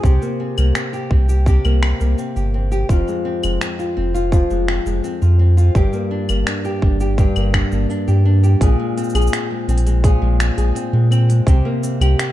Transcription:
Already playing: nylon-string guitar G#3 C4
0.03 sub bass C2, nylon-string guitar C3 G4, kick, cabasa
0.22 nylon-string guitar A#3, cabasa
0.40 nylon-string guitar C4
0.58 sub bass C2, nylon-string guitar A#3, cabasa, claves
0.75 nylon-string guitar C4, finger snap, cabasa
0.93 nylon-string guitar G4, cabasa
1.11 sub bass C2, nylon-string guitar C4, kick
1.29 nylon-string guitar G4, cabasa
1.46 nylon-string guitar C3 G4, kick, cabasa
1.65 sub bass C2, nylon-string guitar A#3, cabasa, claves
1.82 nylon-string guitar C4, finger snap, claves
2.00 sub bass C2, nylon-string guitar A#3, cabasa
2.18 nylon-string guitar C4, cabasa
2.36 sub bass G1, nylon-string guitar G4, cabasa
2.54 nylon-string guitar C4
2.72 nylon-string guitar G4, cabasa
2.89 sub bass F1, nylon-string guitar F2 F4, kick, cabasa
3.07 nylon-string guitar G#3, cabasa
3.25 nylon-string guitar C4
3.43 sub bass F1, nylon-string guitar G#3, cabasa, claves
3.61 nylon-string guitar C4, finger snap, cabasa
3.79 nylon-string guitar F4, cabasa
3.97 sub bass F1, nylon-string guitar C4
4.14 nylon-string guitar F4, cabasa
4.32 nylon-string guitar F2 F4, kick, cabasa
4.50 sub bass F1, nylon-string guitar G#3, cabasa
4.68 nylon-string guitar C4, finger snap
4.86 sub bass F1, nylon-string guitar G#3, cabasa
5.04 nylon-string guitar C4, cabasa
5.22 sub bass F2, nylon-string guitar F4, cabasa
5.39 nylon-string guitar C4
5.57 nylon-string guitar F4, cabasa
5.75 sub bass G1, nylon-string guitar G2 G4, kick, cabasa
5.93 nylon-string guitar A#3, cabasa
6.11 nylon-string guitar D4
6.29 sub bass G1, nylon-string guitar A#3, cabasa, claves
6.47 nylon-string guitar D4, finger snap, cabasa
6.65 nylon-string guitar G4, cabasa
6.82 sub bass G1, nylon-string guitar D4, kick
7.00 nylon-string guitar G4, cabasa
7.18 nylon-string guitar G2 G4, kick, cabasa
7.36 sub bass G1, nylon-string guitar A#3, cabasa, claves
7.54 nylon-string guitar D4, finger snap, kick, claves
7.72 sub bass G1, nylon-string guitar A#3, cabasa
7.90 nylon-string guitar D4, cabasa
8.08 sub bass G2, nylon-string guitar G4, cabasa
8.25 nylon-string guitar D4
8.43 nylon-string guitar G4, cabasa
8.61 sub bass A#1, nylon-string guitar A#2 G#4, kick, open hi-hat, cabasa
8.79 nylon-string guitar G#3
8.97 nylon-string guitar C4, open hi-hat, cabasa
9.04 cabasa
9.09 cabasa
9.14 sub bass A#1, nylon-string guitar G#4, open hi-hat, cabasa, claves
9.22 cabasa
9.27 cabasa
9.33 nylon-string guitar C4, finger snap, open hi-hat, cabasa
9.51 nylon-string guitar G#3
9.68 sub bass A#1, nylon-string guitar C4, open hi-hat, cabasa
9.78 open hi-hat
9.86 nylon-string guitar G#3, open hi-hat, cabasa
10.04 nylon-string guitar A#2 G#4, kick, open hi-hat, cabasa
10.22 sub bass A#1, nylon-string guitar G#3
10.39 nylon-string guitar C4, finger snap, open hi-hat, cabasa
10.57 sub bass A#1, nylon-string guitar G#4, open hi-hat, cabasa
10.75 nylon-string guitar C4, open hi-hat, cabasa
10.93 sub bass A#2, nylon-string guitar G#3
11.11 nylon-string guitar C4, open hi-hat, cabasa, claves
11.29 nylon-string guitar G#3, open hi-hat, cabasa
11.47 sub bass C2, nylon-string guitar C3 G4, kick, open hi-hat, cabasa
11.65 nylon-string guitar A#3
11.83 nylon-string guitar C4, open hi-hat, cabasa
12.00 sub bass C2, nylon-string guitar G4, open hi-hat, cabasa, claves
12.19 nylon-string guitar C4, finger snap, open hi-hat, cabasa

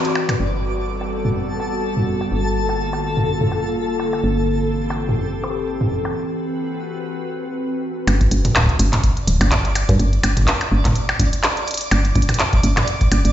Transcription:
Already playing: ambient pad E3 C4 F#4 B4, synth texture D5
0.05 closed hi-hat
0.15 percussion blips
0.29 closed hi-hat, mid tom, percussion blips
0.40 fm bass G1, ambient pad G3 B3 F#4 A4, synth texture A4, closed hi-hat
0.63 closed hi-hat
0.77 closed hi-hat
0.88 closed hi-hat
1.01 closed hi-hat, percussion blips
1.11 closed hi-hat
1.25 mid tom
1.35 closed hi-hat
1.60 percussion blips
1.83 closed hi-hat
1.97 mid tom
2.08 open hi-hat
2.14 closed hi-hat
2.21 percussion blips
2.31 fm bass G1, ambient pad D3 A#3 F4 A4, closed hi-hat
2.56 closed hi-hat
2.69 percussion blips
2.93 percussion blips
2.97 closed hi-hat
2.99 closed hi-hat
3.02 closed hi-hat, open hi-hat
3.17 mid tom
3.41 mid tom
3.52 percussion blips
3.84 closed hi-hat
3.89 closed hi-hat
3.92 closed hi-hat
4.00 closed hi-hat, percussion blips
4.13 closed hi-hat, percussion blips
4.24 fm bass G1, ambient pad E3 C4 G4, closed hi-hat
4.48 closed hi-hat
4.61 closed hi-hat
4.72 closed hi-hat
4.85 closed hi-hat
4.90 percussion blips
4.96 closed hi-hat
5.09 closed hi-hat, mid tom
5.19 closed hi-hat
5.44 closed hi-hat, percussion blips
5.57 closed hi-hat
5.67 closed hi-hat
5.81 closed hi-hat, mid tom
5.92 open hi-hat
6.05 closed hi-hat, percussion blips
6.15 ambient pad C4 F#4 B4
8.07 fm bass G1, synth texture D5, closed hi-hat, percussion blips
8.21 kick, closed hi-hat
8.31 fm bass G1, closed hi-hat
8.45 closed hi-hat, mid tom
8.56 kick, clap, closed hi-hat, percussion blips
8.58 kick
8.61 kick
8.64 kick
8.66 kick, closed hi-hat
8.79 fm bass G1, closed hi-hat
8.93 clap, closed hi-hat, mid tom
9.04 kick, closed hi-hat
9.17 closed hi-hat
9.27 fm bass D1, closed hi-hat
9.41 fm bass G1, closed hi-hat, percussion blips
9.52 kick, clap, closed hi-hat
9.65 closed hi-hat
9.75 closed hi-hat, percussion blips
9.89 fm bass G2, kick, closed hi-hat
10.00 fm bass G1, closed hi-hat
10.13 closed hi-hat
10.23 fm bass G1, closed hi-hat, percussion blips
10.37 kick, closed hi-hat, mid tom
10.39 kick
10.41 kick
10.43 kick
10.45 kick, clap, closed hi-hat
10.61 closed hi-hat, percussion blips
10.72 fm bass G1
10.85 kick, clap, closed hi-hat, mid tom
10.88 mid tom
10.90 mid tom
10.93 closed hi-hat, mid tom
11.09 closed hi-hat, percussion blips
11.20 fm bass G1, kick, closed hi-hat
11.33 closed hi-hat
11.43 clap, closed hi-hat, percussion blips
11.57 closed hi-hat
11.68 closed hi-hat
11.71 closed hi-hat
11.74 closed hi-hat
11.78 closed hi-hat
11.81 closed hi-hat
11.91 fm bass G1, closed hi-hat, percussion blips
12.05 closed hi-hat
12.16 fm bass G1, kick, closed hi-hat
12.22 closed hi-hat
12.29 closed hi-hat, mid tom, percussion blips
12.34 closed hi-hat
12.39 clap, closed hi-hat
12.53 kick, closed hi-hat
12.63 fm bass G1, closed hi-hat
12.77 clap, closed hi-hat, mid tom, percussion blips
12.88 closed hi-hat
13.01 kick, closed hi-hat
13.12 fm bass G1, closed hi-hat, percussion blips
13.25 fm bass G1, closed hi-hat

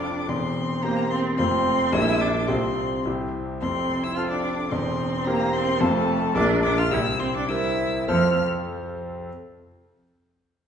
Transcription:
Already playing: grand piano F1 F2 F3 F4 A4, cello D4, violin D6
0.29 grand piano E1 E2, cello C4, violin C6
0.83 cello A#3, grand piano A#3 G4 C5, violin A#5
1.10 cello C4, violin C6
1.37 grand piano F1 F2 A3 F4 C5, cello C4, violin C6
1.92 grand piano A#1 A#2 G3 D4 A#4, cello E4, violin E6
2.20 cello D4, violin D6
2.48 grand piano C2 C3 C4 F4 A4, cello C4, violin C6
3.05 grand piano C2 C3 C4 E4 G4
3.61 grand piano F1 F2, cello C4, violin C6
4.03 cello E4, violin E6
4.16 grand piano C4 F4 A4, cello F4, violin F6
4.30 cello D4, violin D6
4.71 grand piano E1 E2, cello C4, violin C6
5.25 cello A#3, grand piano C4 G4 A#4, violin A#5
5.53 cello C4, violin C6
5.80 grand piano F1 F2 C4 F4 A4, cello A3, violin A5
6.35 grand piano A#1 A#2 A#3 F4 A#4, cello D4, violin D6
6.63 cello D4, violin D6
6.78 cello F4, violin F6
6.91 grand piano C2 C3, cello E4, violin E6
7.19 cello C4, violin C6
7.34 cello D4, violin D6
7.48 grand piano G3 C4 A#4, cello E4, violin E6
8.08 grand piano F2 F3 C4 A4 C5, cello F3, violin F6

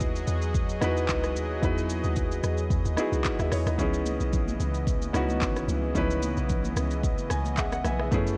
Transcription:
Already playing: log drum bass D#2, analog synth pad F#3 F#4 G#4 D#5, grand piano B3 D#4 E4 F#4 G#4
0.00 kick, shaker
0.16 shaker
0.27 log drum bass E2, shaker
0.42 shaker
0.54 kick, shaker
0.69 shaker
0.81 log drum bass E2, grand piano B3 D#4 E4 F#4 B4, cross-stick, shaker
0.97 shaker
1.08 log drum bass C#2, kick, clap, shaker
1.23 cross-stick, shaker
1.35 log drum bass D#2, shaker
1.61 log drum bass E2, grand piano B3 D#4 E4 F#4 B4, kick, shaker
1.78 shaker
1.90 shaker
2.04 log drum bass D#2, shaker
2.16 kick, shaker
2.32 shaker
2.44 log drum bass E2, cross-stick, shaker
2.58 shaker
2.71 log drum bass E2, kick, shaker
2.85 log drum bass D#2, shaker
2.97 grand piano B3 D#4 E4 F#4 G#4, cross-stick, shaker
3.13 log drum bass C#2, shaker
3.25 kick, clap, shaker
3.39 log drum bass D#2, grand piano G#4 E5, cross-stick, shaker
3.52 log drum bass E2, grand piano E4 C#5, cross-stick, open hi-hat, shaker
3.66 log drum bass D#2, grand piano D#4 B4, cross-stick, shaker
3.78 log drum bass C#2, analog synth pad C#3 E3 B3, grand piano B3 C#4 D#4 E4 G#4, kick, low conga, shaker
3.94 shaker
4.06 high conga, shaker
4.21 log drum bass B1, shaker
4.33 kick, low conga, shaker
4.48 high conga, shaker
4.60 log drum bass C#2, shaker
4.75 shaker
4.87 kick, shaker
5.02 high conga, shaker
5.13 log drum bass C#2, grand piano B3 C#4 D#4 E4 F#4, cross-stick, shaker
5.29 high conga, shaker
5.41 log drum bass G#1, kick, clap, shaker
5.56 cross-stick, shaker
5.68 log drum bass C#2, high conga, low conga, shaker
5.95 log drum bass C#2, grand piano B3 C#4 D#4 E4 B4, kick, low conga, shaker
6.10 shaker
6.22 high conga, shaker
6.37 log drum bass B1, shaker
6.49 kick, low conga, shaker
6.64 high conga, shaker
6.76 log drum bass C#2, cross-stick, shaker
6.91 shaker
7.03 kick, shaker
7.18 high conga, shaker
7.30 log drum bass C#2, grand piano G#5, cross-stick, shaker
7.45 high conga, shaker
7.57 grand piano G#4 E5 F#5, kick, clap, shaker
7.72 grand piano F#5, cross-stick, shaker
7.84 log drum bass B1, grand piano B4 E5 G#5, cross-stick, high conga, low conga, shaker
7.99 grand piano G#4 E5, cross-stick
8.11 log drum bass F#2, analog synth pad F#3 A3 E4 G#4 B4, grand piano A3 B3 C#4 E4 G#4, kick, low conga, shaker
8.27 shaker

